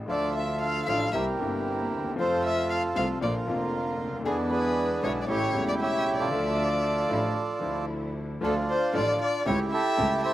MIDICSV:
0, 0, Header, 1, 6, 480
1, 0, Start_track
1, 0, Key_signature, -1, "minor"
1, 0, Tempo, 520833
1, 79, Time_signature, 4, 2, 24, 8
1, 9525, End_track
2, 0, Start_track
2, 0, Title_t, "Violin"
2, 0, Program_c, 0, 40
2, 98, Note_on_c, 0, 74, 61
2, 314, Note_off_c, 0, 74, 0
2, 320, Note_on_c, 0, 76, 61
2, 546, Note_off_c, 0, 76, 0
2, 564, Note_on_c, 0, 77, 74
2, 789, Note_off_c, 0, 77, 0
2, 795, Note_on_c, 0, 77, 74
2, 1024, Note_off_c, 0, 77, 0
2, 1038, Note_on_c, 0, 76, 57
2, 1148, Note_off_c, 0, 76, 0
2, 2026, Note_on_c, 0, 72, 65
2, 2241, Note_off_c, 0, 72, 0
2, 2257, Note_on_c, 0, 76, 70
2, 2476, Note_off_c, 0, 76, 0
2, 2491, Note_on_c, 0, 77, 71
2, 2598, Note_off_c, 0, 77, 0
2, 2730, Note_on_c, 0, 77, 70
2, 2837, Note_off_c, 0, 77, 0
2, 2972, Note_on_c, 0, 74, 61
2, 3079, Note_off_c, 0, 74, 0
2, 3924, Note_on_c, 0, 68, 65
2, 4030, Note_off_c, 0, 68, 0
2, 4167, Note_on_c, 0, 71, 69
2, 4605, Note_off_c, 0, 71, 0
2, 4638, Note_on_c, 0, 73, 67
2, 4715, Note_off_c, 0, 73, 0
2, 4808, Note_on_c, 0, 74, 52
2, 4867, Note_off_c, 0, 74, 0
2, 4874, Note_on_c, 0, 73, 78
2, 5203, Note_off_c, 0, 73, 0
2, 5235, Note_on_c, 0, 74, 68
2, 5287, Note_off_c, 0, 74, 0
2, 5346, Note_on_c, 0, 76, 67
2, 5678, Note_off_c, 0, 76, 0
2, 5697, Note_on_c, 0, 74, 65
2, 7229, Note_off_c, 0, 74, 0
2, 7783, Note_on_c, 0, 69, 66
2, 7886, Note_off_c, 0, 69, 0
2, 8019, Note_on_c, 0, 72, 68
2, 8233, Note_off_c, 0, 72, 0
2, 8254, Note_on_c, 0, 74, 73
2, 8471, Note_off_c, 0, 74, 0
2, 8493, Note_on_c, 0, 74, 75
2, 8710, Note_off_c, 0, 74, 0
2, 8726, Note_on_c, 0, 73, 78
2, 8833, Note_off_c, 0, 73, 0
2, 8959, Note_on_c, 0, 76, 84
2, 9403, Note_off_c, 0, 76, 0
2, 9431, Note_on_c, 0, 76, 79
2, 9525, Note_off_c, 0, 76, 0
2, 9525, End_track
3, 0, Start_track
3, 0, Title_t, "Bandoneon"
3, 0, Program_c, 1, 23
3, 83, Note_on_c, 1, 65, 61
3, 84, Note_on_c, 1, 69, 60
3, 98, Note_on_c, 1, 74, 78
3, 314, Note_off_c, 1, 74, 0
3, 340, Note_on_c, 1, 76, 75
3, 556, Note_off_c, 1, 76, 0
3, 571, Note_on_c, 1, 77, 81
3, 792, Note_off_c, 1, 77, 0
3, 817, Note_on_c, 1, 77, 79
3, 1011, Note_off_c, 1, 65, 0
3, 1011, Note_off_c, 1, 69, 0
3, 1054, Note_on_c, 1, 76, 65
3, 1057, Note_on_c, 1, 70, 50
3, 1059, Note_off_c, 1, 77, 0
3, 1059, Note_on_c, 1, 67, 47
3, 1160, Note_off_c, 1, 76, 0
3, 1977, Note_off_c, 1, 70, 0
3, 1978, Note_off_c, 1, 67, 0
3, 2020, Note_on_c, 1, 65, 62
3, 2029, Note_on_c, 1, 69, 62
3, 2036, Note_on_c, 1, 72, 84
3, 2246, Note_off_c, 1, 72, 0
3, 2267, Note_on_c, 1, 76, 79
3, 2503, Note_on_c, 1, 77, 87
3, 2505, Note_off_c, 1, 76, 0
3, 2608, Note_off_c, 1, 77, 0
3, 2753, Note_on_c, 1, 77, 79
3, 2855, Note_off_c, 1, 77, 0
3, 2937, Note_off_c, 1, 65, 0
3, 2942, Note_off_c, 1, 69, 0
3, 2980, Note_on_c, 1, 70, 50
3, 2980, Note_on_c, 1, 74, 62
3, 2981, Note_on_c, 1, 65, 53
3, 3085, Note_off_c, 1, 74, 0
3, 3891, Note_off_c, 1, 65, 0
3, 3891, Note_off_c, 1, 70, 0
3, 3922, Note_on_c, 1, 62, 58
3, 3922, Note_on_c, 1, 68, 79
3, 3929, Note_on_c, 1, 59, 65
3, 4029, Note_off_c, 1, 68, 0
3, 4152, Note_off_c, 1, 62, 0
3, 4156, Note_on_c, 1, 71, 84
3, 4166, Note_on_c, 1, 62, 65
3, 4167, Note_on_c, 1, 68, 62
3, 4600, Note_off_c, 1, 71, 0
3, 4638, Note_on_c, 1, 73, 78
3, 4715, Note_off_c, 1, 73, 0
3, 4816, Note_on_c, 1, 74, 60
3, 4838, Note_off_c, 1, 62, 0
3, 4839, Note_off_c, 1, 59, 0
3, 4839, Note_off_c, 1, 68, 0
3, 4875, Note_on_c, 1, 73, 83
3, 4876, Note_off_c, 1, 74, 0
3, 4876, Note_on_c, 1, 64, 68
3, 4882, Note_on_c, 1, 67, 54
3, 5204, Note_off_c, 1, 73, 0
3, 5239, Note_on_c, 1, 74, 80
3, 5290, Note_off_c, 1, 74, 0
3, 5351, Note_off_c, 1, 67, 0
3, 5365, Note_on_c, 1, 67, 66
3, 5365, Note_on_c, 1, 76, 90
3, 5373, Note_on_c, 1, 73, 64
3, 5714, Note_on_c, 1, 74, 79
3, 5715, Note_on_c, 1, 65, 62
3, 5717, Note_on_c, 1, 69, 59
3, 5722, Note_off_c, 1, 76, 0
3, 5787, Note_off_c, 1, 64, 0
3, 5799, Note_off_c, 1, 67, 0
3, 5803, Note_off_c, 1, 73, 0
3, 7238, Note_off_c, 1, 74, 0
3, 7239, Note_off_c, 1, 65, 0
3, 7239, Note_off_c, 1, 69, 0
3, 7767, Note_on_c, 1, 62, 65
3, 7772, Note_on_c, 1, 65, 62
3, 7781, Note_on_c, 1, 69, 81
3, 7884, Note_off_c, 1, 69, 0
3, 8020, Note_on_c, 1, 72, 79
3, 8257, Note_off_c, 1, 72, 0
3, 8266, Note_on_c, 1, 74, 72
3, 8478, Note_off_c, 1, 74, 0
3, 8500, Note_on_c, 1, 74, 82
3, 8689, Note_off_c, 1, 62, 0
3, 8691, Note_off_c, 1, 65, 0
3, 8714, Note_off_c, 1, 74, 0
3, 8726, Note_on_c, 1, 67, 64
3, 8729, Note_on_c, 1, 64, 68
3, 8737, Note_on_c, 1, 73, 84
3, 8841, Note_off_c, 1, 73, 0
3, 8953, Note_off_c, 1, 67, 0
3, 8967, Note_on_c, 1, 67, 70
3, 8975, Note_on_c, 1, 76, 103
3, 8978, Note_on_c, 1, 69, 79
3, 9412, Note_off_c, 1, 76, 0
3, 9432, Note_off_c, 1, 69, 0
3, 9443, Note_on_c, 1, 76, 100
3, 9446, Note_on_c, 1, 69, 67
3, 9449, Note_on_c, 1, 72, 73
3, 9525, Note_off_c, 1, 64, 0
3, 9525, Note_off_c, 1, 67, 0
3, 9525, Note_off_c, 1, 69, 0
3, 9525, Note_off_c, 1, 72, 0
3, 9525, Note_off_c, 1, 76, 0
3, 9525, End_track
4, 0, Start_track
4, 0, Title_t, "String section"
4, 0, Program_c, 2, 48
4, 82, Note_on_c, 2, 62, 71
4, 82, Note_on_c, 2, 76, 67
4, 770, Note_off_c, 2, 62, 0
4, 770, Note_off_c, 2, 76, 0
4, 804, Note_on_c, 2, 62, 66
4, 806, Note_on_c, 2, 64, 56
4, 811, Note_on_c, 2, 65, 74
4, 1007, Note_off_c, 2, 62, 0
4, 1008, Note_off_c, 2, 64, 0
4, 1010, Note_off_c, 2, 65, 0
4, 1039, Note_on_c, 2, 58, 59
4, 1040, Note_on_c, 2, 60, 54
4, 1043, Note_on_c, 2, 64, 60
4, 1245, Note_off_c, 2, 58, 0
4, 1245, Note_off_c, 2, 60, 0
4, 1247, Note_off_c, 2, 64, 0
4, 1279, Note_on_c, 2, 60, 57
4, 1280, Note_on_c, 2, 58, 57
4, 1284, Note_on_c, 2, 64, 73
4, 1968, Note_off_c, 2, 60, 0
4, 1969, Note_off_c, 2, 58, 0
4, 1971, Note_off_c, 2, 64, 0
4, 2004, Note_on_c, 2, 57, 68
4, 2004, Note_on_c, 2, 60, 71
4, 2008, Note_on_c, 2, 65, 79
4, 2690, Note_off_c, 2, 57, 0
4, 2691, Note_off_c, 2, 60, 0
4, 2693, Note_off_c, 2, 65, 0
4, 2726, Note_on_c, 2, 57, 66
4, 2729, Note_on_c, 2, 60, 61
4, 2729, Note_on_c, 2, 65, 70
4, 2928, Note_off_c, 2, 57, 0
4, 2930, Note_off_c, 2, 60, 0
4, 2930, Note_off_c, 2, 65, 0
4, 2966, Note_on_c, 2, 62, 53
4, 2967, Note_on_c, 2, 58, 55
4, 2968, Note_on_c, 2, 65, 69
4, 3168, Note_off_c, 2, 58, 0
4, 3168, Note_off_c, 2, 62, 0
4, 3169, Note_off_c, 2, 65, 0
4, 3207, Note_on_c, 2, 62, 53
4, 3209, Note_on_c, 2, 58, 64
4, 3210, Note_on_c, 2, 65, 72
4, 3886, Note_off_c, 2, 62, 0
4, 3887, Note_off_c, 2, 58, 0
4, 3887, Note_off_c, 2, 65, 0
4, 3923, Note_on_c, 2, 56, 72
4, 3923, Note_on_c, 2, 62, 73
4, 3928, Note_on_c, 2, 64, 83
4, 4600, Note_off_c, 2, 56, 0
4, 4600, Note_off_c, 2, 62, 0
4, 4602, Note_off_c, 2, 64, 0
4, 4638, Note_on_c, 2, 56, 68
4, 4641, Note_on_c, 2, 64, 82
4, 4642, Note_on_c, 2, 62, 61
4, 4835, Note_off_c, 2, 56, 0
4, 4837, Note_off_c, 2, 62, 0
4, 4837, Note_off_c, 2, 64, 0
4, 4876, Note_on_c, 2, 57, 66
4, 4878, Note_on_c, 2, 61, 58
4, 4881, Note_on_c, 2, 67, 62
4, 5073, Note_off_c, 2, 57, 0
4, 5074, Note_off_c, 2, 61, 0
4, 5075, Note_off_c, 2, 67, 0
4, 5109, Note_on_c, 2, 57, 61
4, 5109, Note_on_c, 2, 67, 69
4, 5110, Note_on_c, 2, 61, 55
4, 5786, Note_off_c, 2, 57, 0
4, 5786, Note_off_c, 2, 67, 0
4, 5787, Note_off_c, 2, 61, 0
4, 5822, Note_on_c, 2, 53, 72
4, 5826, Note_on_c, 2, 62, 68
4, 5828, Note_on_c, 2, 76, 88
4, 6504, Note_off_c, 2, 53, 0
4, 6506, Note_off_c, 2, 62, 0
4, 6507, Note_off_c, 2, 76, 0
4, 6538, Note_on_c, 2, 53, 68
4, 6539, Note_on_c, 2, 62, 60
4, 6541, Note_on_c, 2, 64, 72
4, 6742, Note_off_c, 2, 53, 0
4, 6742, Note_off_c, 2, 62, 0
4, 6743, Note_off_c, 2, 64, 0
4, 7020, Note_on_c, 2, 53, 59
4, 7021, Note_on_c, 2, 62, 55
4, 7024, Note_on_c, 2, 64, 72
4, 7719, Note_off_c, 2, 53, 0
4, 7719, Note_off_c, 2, 62, 0
4, 7720, Note_off_c, 2, 64, 0
4, 7752, Note_on_c, 2, 57, 76
4, 7753, Note_on_c, 2, 62, 69
4, 7756, Note_on_c, 2, 65, 77
4, 7957, Note_off_c, 2, 57, 0
4, 7958, Note_off_c, 2, 62, 0
4, 7959, Note_off_c, 2, 65, 0
4, 8238, Note_on_c, 2, 57, 71
4, 8238, Note_on_c, 2, 62, 66
4, 8242, Note_on_c, 2, 65, 82
4, 8441, Note_off_c, 2, 57, 0
4, 8441, Note_off_c, 2, 62, 0
4, 8443, Note_off_c, 2, 65, 0
4, 8713, Note_on_c, 2, 57, 65
4, 8714, Note_on_c, 2, 61, 63
4, 8714, Note_on_c, 2, 67, 68
4, 8917, Note_off_c, 2, 57, 0
4, 8918, Note_off_c, 2, 61, 0
4, 8918, Note_off_c, 2, 67, 0
4, 9191, Note_on_c, 2, 57, 68
4, 9197, Note_on_c, 2, 61, 60
4, 9198, Note_on_c, 2, 67, 70
4, 9395, Note_off_c, 2, 57, 0
4, 9398, Note_off_c, 2, 61, 0
4, 9398, Note_off_c, 2, 67, 0
4, 9525, End_track
5, 0, Start_track
5, 0, Title_t, "Grand piano"
5, 0, Program_c, 3, 0
5, 56, Note_on_c, 3, 50, 66
5, 70, Note_on_c, 3, 53, 54
5, 74, Note_on_c, 3, 38, 72
5, 80, Note_on_c, 3, 57, 53
5, 92, Note_on_c, 3, 76, 59
5, 764, Note_off_c, 3, 53, 0
5, 766, Note_off_c, 3, 38, 0
5, 766, Note_off_c, 3, 50, 0
5, 769, Note_off_c, 3, 57, 0
5, 775, Note_off_c, 3, 76, 0
5, 802, Note_on_c, 3, 50, 56
5, 803, Note_on_c, 3, 53, 51
5, 804, Note_on_c, 3, 45, 64
5, 805, Note_on_c, 3, 33, 70
5, 806, Note_on_c, 3, 57, 50
5, 808, Note_on_c, 3, 64, 65
5, 1006, Note_off_c, 3, 50, 0
5, 1006, Note_off_c, 3, 53, 0
5, 1007, Note_off_c, 3, 33, 0
5, 1007, Note_off_c, 3, 45, 0
5, 1008, Note_off_c, 3, 57, 0
5, 1009, Note_off_c, 3, 64, 0
5, 1040, Note_on_c, 3, 55, 51
5, 1041, Note_on_c, 3, 48, 60
5, 1042, Note_on_c, 3, 58, 49
5, 1043, Note_on_c, 3, 36, 68
5, 1047, Note_on_c, 3, 64, 65
5, 1245, Note_off_c, 3, 55, 0
5, 1246, Note_off_c, 3, 36, 0
5, 1246, Note_off_c, 3, 58, 0
5, 1247, Note_off_c, 3, 48, 0
5, 1249, Note_off_c, 3, 64, 0
5, 1268, Note_on_c, 3, 48, 60
5, 1281, Note_on_c, 3, 55, 58
5, 1286, Note_on_c, 3, 31, 72
5, 1287, Note_on_c, 3, 43, 71
5, 1294, Note_on_c, 3, 58, 58
5, 1305, Note_on_c, 3, 64, 65
5, 1827, Note_on_c, 3, 38, 39
5, 1883, Note_on_c, 3, 39, 51
5, 1887, Note_off_c, 3, 38, 0
5, 1943, Note_on_c, 3, 40, 62
5, 1945, Note_off_c, 3, 39, 0
5, 1963, Note_off_c, 3, 48, 0
5, 1969, Note_off_c, 3, 55, 0
5, 1972, Note_off_c, 3, 31, 0
5, 1972, Note_off_c, 3, 43, 0
5, 1976, Note_off_c, 3, 58, 0
5, 1981, Note_off_c, 3, 64, 0
5, 1981, Note_on_c, 3, 48, 55
5, 1991, Note_on_c, 3, 53, 73
5, 1999, Note_on_c, 3, 41, 65
5, 2005, Note_on_c, 3, 57, 53
5, 2006, Note_off_c, 3, 40, 0
5, 2017, Note_on_c, 3, 65, 70
5, 2679, Note_off_c, 3, 48, 0
5, 2687, Note_off_c, 3, 53, 0
5, 2688, Note_off_c, 3, 41, 0
5, 2691, Note_off_c, 3, 57, 0
5, 2697, Note_off_c, 3, 65, 0
5, 2719, Note_on_c, 3, 53, 59
5, 2721, Note_on_c, 3, 48, 68
5, 2724, Note_on_c, 3, 36, 73
5, 2724, Note_on_c, 3, 57, 51
5, 2727, Note_on_c, 3, 65, 64
5, 2925, Note_off_c, 3, 53, 0
5, 2926, Note_off_c, 3, 48, 0
5, 2928, Note_off_c, 3, 36, 0
5, 2928, Note_off_c, 3, 57, 0
5, 2929, Note_off_c, 3, 65, 0
5, 2955, Note_on_c, 3, 50, 53
5, 2959, Note_on_c, 3, 34, 66
5, 2959, Note_on_c, 3, 53, 59
5, 2960, Note_on_c, 3, 46, 72
5, 2961, Note_on_c, 3, 65, 67
5, 2962, Note_on_c, 3, 58, 51
5, 3163, Note_off_c, 3, 50, 0
5, 3164, Note_off_c, 3, 34, 0
5, 3164, Note_off_c, 3, 53, 0
5, 3165, Note_off_c, 3, 46, 0
5, 3165, Note_off_c, 3, 65, 0
5, 3166, Note_off_c, 3, 58, 0
5, 3184, Note_on_c, 3, 50, 57
5, 3195, Note_on_c, 3, 53, 60
5, 3201, Note_on_c, 3, 41, 76
5, 3204, Note_on_c, 3, 29, 77
5, 3206, Note_on_c, 3, 58, 61
5, 3221, Note_on_c, 3, 65, 70
5, 3747, Note_on_c, 3, 37, 41
5, 3805, Note_off_c, 3, 37, 0
5, 3807, Note_on_c, 3, 38, 54
5, 3863, Note_on_c, 3, 39, 64
5, 3864, Note_off_c, 3, 38, 0
5, 3874, Note_off_c, 3, 50, 0
5, 3880, Note_off_c, 3, 53, 0
5, 3883, Note_off_c, 3, 41, 0
5, 3884, Note_off_c, 3, 29, 0
5, 3885, Note_off_c, 3, 58, 0
5, 3893, Note_off_c, 3, 65, 0
5, 3902, Note_on_c, 3, 50, 61
5, 3913, Note_on_c, 3, 56, 52
5, 3921, Note_on_c, 3, 40, 69
5, 3921, Note_on_c, 3, 52, 70
5, 3922, Note_off_c, 3, 39, 0
5, 3925, Note_on_c, 3, 59, 52
5, 3942, Note_on_c, 3, 64, 67
5, 4589, Note_off_c, 3, 50, 0
5, 4595, Note_off_c, 3, 56, 0
5, 4599, Note_off_c, 3, 40, 0
5, 4599, Note_off_c, 3, 52, 0
5, 4601, Note_off_c, 3, 59, 0
5, 4609, Note_off_c, 3, 64, 0
5, 4635, Note_on_c, 3, 50, 60
5, 4637, Note_on_c, 3, 56, 55
5, 4638, Note_on_c, 3, 35, 72
5, 4639, Note_on_c, 3, 59, 62
5, 4640, Note_on_c, 3, 47, 70
5, 4644, Note_on_c, 3, 64, 68
5, 4834, Note_off_c, 3, 50, 0
5, 4835, Note_off_c, 3, 35, 0
5, 4835, Note_off_c, 3, 56, 0
5, 4836, Note_off_c, 3, 47, 0
5, 4836, Note_off_c, 3, 59, 0
5, 4838, Note_off_c, 3, 64, 0
5, 4864, Note_on_c, 3, 55, 52
5, 4866, Note_on_c, 3, 33, 72
5, 4866, Note_on_c, 3, 49, 63
5, 4868, Note_on_c, 3, 45, 69
5, 4871, Note_on_c, 3, 57, 57
5, 4871, Note_on_c, 3, 64, 66
5, 5067, Note_off_c, 3, 55, 0
5, 5068, Note_off_c, 3, 33, 0
5, 5068, Note_off_c, 3, 49, 0
5, 5069, Note_off_c, 3, 45, 0
5, 5070, Note_off_c, 3, 57, 0
5, 5070, Note_off_c, 3, 64, 0
5, 5086, Note_on_c, 3, 49, 69
5, 5097, Note_on_c, 3, 55, 53
5, 5104, Note_on_c, 3, 28, 76
5, 5105, Note_on_c, 3, 40, 68
5, 5109, Note_on_c, 3, 57, 59
5, 5122, Note_on_c, 3, 64, 67
5, 5640, Note_on_c, 3, 35, 40
5, 5701, Note_off_c, 3, 35, 0
5, 5701, Note_on_c, 3, 36, 48
5, 5756, Note_on_c, 3, 37, 64
5, 5761, Note_off_c, 3, 36, 0
5, 5775, Note_off_c, 3, 49, 0
5, 5780, Note_off_c, 3, 55, 0
5, 5784, Note_off_c, 3, 28, 0
5, 5784, Note_off_c, 3, 40, 0
5, 5786, Note_off_c, 3, 57, 0
5, 5793, Note_off_c, 3, 64, 0
5, 5794, Note_on_c, 3, 50, 60
5, 5808, Note_off_c, 3, 50, 0
5, 5809, Note_on_c, 3, 53, 54
5, 5816, Note_on_c, 3, 38, 76
5, 5816, Note_on_c, 3, 50, 70
5, 5819, Note_off_c, 3, 37, 0
5, 5821, Note_on_c, 3, 57, 57
5, 5831, Note_on_c, 3, 76, 71
5, 6498, Note_off_c, 3, 53, 0
5, 6501, Note_off_c, 3, 38, 0
5, 6501, Note_off_c, 3, 50, 0
5, 6504, Note_off_c, 3, 57, 0
5, 6508, Note_off_c, 3, 76, 0
5, 6534, Note_on_c, 3, 33, 67
5, 6535, Note_on_c, 3, 50, 59
5, 6535, Note_on_c, 3, 53, 54
5, 6537, Note_on_c, 3, 57, 54
5, 6538, Note_on_c, 3, 45, 66
5, 6540, Note_on_c, 3, 64, 64
5, 6739, Note_off_c, 3, 33, 0
5, 6740, Note_off_c, 3, 50, 0
5, 6740, Note_off_c, 3, 53, 0
5, 6741, Note_off_c, 3, 57, 0
5, 6742, Note_off_c, 3, 45, 0
5, 6742, Note_off_c, 3, 64, 0
5, 6995, Note_on_c, 3, 50, 63
5, 7008, Note_on_c, 3, 53, 53
5, 7009, Note_off_c, 3, 50, 0
5, 7015, Note_on_c, 3, 50, 70
5, 7016, Note_on_c, 3, 38, 73
5, 7023, Note_on_c, 3, 57, 50
5, 7034, Note_on_c, 3, 64, 65
5, 7712, Note_off_c, 3, 53, 0
5, 7716, Note_off_c, 3, 38, 0
5, 7716, Note_off_c, 3, 50, 0
5, 7720, Note_off_c, 3, 57, 0
5, 7725, Note_off_c, 3, 64, 0
5, 7749, Note_on_c, 3, 50, 79
5, 7750, Note_on_c, 3, 53, 58
5, 7752, Note_on_c, 3, 38, 79
5, 7752, Note_on_c, 3, 57, 59
5, 7753, Note_on_c, 3, 65, 63
5, 7956, Note_off_c, 3, 53, 0
5, 7957, Note_off_c, 3, 38, 0
5, 7957, Note_off_c, 3, 50, 0
5, 7957, Note_off_c, 3, 57, 0
5, 7958, Note_off_c, 3, 65, 0
5, 8233, Note_on_c, 3, 45, 77
5, 8233, Note_on_c, 3, 53, 58
5, 8234, Note_on_c, 3, 50, 62
5, 8235, Note_on_c, 3, 33, 82
5, 8235, Note_on_c, 3, 57, 58
5, 8237, Note_on_c, 3, 65, 78
5, 8439, Note_off_c, 3, 33, 0
5, 8439, Note_off_c, 3, 45, 0
5, 8439, Note_off_c, 3, 50, 0
5, 8439, Note_off_c, 3, 53, 0
5, 8440, Note_off_c, 3, 57, 0
5, 8441, Note_off_c, 3, 65, 0
5, 8714, Note_on_c, 3, 49, 74
5, 8716, Note_on_c, 3, 37, 79
5, 8716, Note_on_c, 3, 55, 57
5, 8719, Note_on_c, 3, 64, 72
5, 8720, Note_on_c, 3, 57, 59
5, 8919, Note_off_c, 3, 37, 0
5, 8919, Note_off_c, 3, 55, 0
5, 8920, Note_off_c, 3, 49, 0
5, 8920, Note_off_c, 3, 64, 0
5, 8921, Note_off_c, 3, 57, 0
5, 9193, Note_on_c, 3, 49, 76
5, 9195, Note_on_c, 3, 55, 61
5, 9199, Note_on_c, 3, 37, 84
5, 9199, Note_on_c, 3, 57, 61
5, 9200, Note_on_c, 3, 64, 69
5, 9397, Note_off_c, 3, 55, 0
5, 9399, Note_off_c, 3, 37, 0
5, 9399, Note_off_c, 3, 57, 0
5, 9400, Note_off_c, 3, 49, 0
5, 9400, Note_off_c, 3, 64, 0
5, 9525, End_track
6, 0, Start_track
6, 0, Title_t, "Double bass"
6, 0, Program_c, 4, 43
6, 77, Note_on_c, 4, 38, 80
6, 768, Note_off_c, 4, 38, 0
6, 804, Note_on_c, 4, 33, 80
6, 1007, Note_off_c, 4, 33, 0
6, 1046, Note_on_c, 4, 36, 78
6, 1248, Note_off_c, 4, 36, 0
6, 1283, Note_on_c, 4, 31, 71
6, 1761, Note_off_c, 4, 31, 0
6, 1767, Note_on_c, 4, 39, 55
6, 2002, Note_off_c, 4, 39, 0
6, 2008, Note_on_c, 4, 41, 94
6, 2692, Note_off_c, 4, 41, 0
6, 2726, Note_on_c, 4, 36, 77
6, 2928, Note_off_c, 4, 36, 0
6, 2964, Note_on_c, 4, 34, 86
6, 3167, Note_off_c, 4, 34, 0
6, 3212, Note_on_c, 4, 29, 79
6, 3683, Note_off_c, 4, 29, 0
6, 3688, Note_on_c, 4, 38, 54
6, 3922, Note_off_c, 4, 38, 0
6, 3927, Note_on_c, 4, 40, 90
6, 4602, Note_off_c, 4, 40, 0
6, 4635, Note_on_c, 4, 35, 83
6, 4834, Note_off_c, 4, 35, 0
6, 4871, Note_on_c, 4, 33, 94
6, 5070, Note_off_c, 4, 33, 0
6, 5111, Note_on_c, 4, 28, 76
6, 5577, Note_off_c, 4, 28, 0
6, 5583, Note_on_c, 4, 36, 55
6, 5817, Note_off_c, 4, 36, 0
6, 5822, Note_on_c, 4, 38, 83
6, 6504, Note_off_c, 4, 38, 0
6, 6539, Note_on_c, 4, 33, 76
6, 6742, Note_off_c, 4, 33, 0
6, 7020, Note_on_c, 4, 38, 67
6, 7718, Note_off_c, 4, 38, 0
6, 7755, Note_on_c, 4, 38, 94
6, 7958, Note_off_c, 4, 38, 0
6, 8238, Note_on_c, 4, 33, 84
6, 8441, Note_off_c, 4, 33, 0
6, 8723, Note_on_c, 4, 37, 99
6, 8922, Note_off_c, 4, 37, 0
6, 9197, Note_on_c, 4, 37, 88
6, 9398, Note_off_c, 4, 37, 0
6, 9525, End_track
0, 0, End_of_file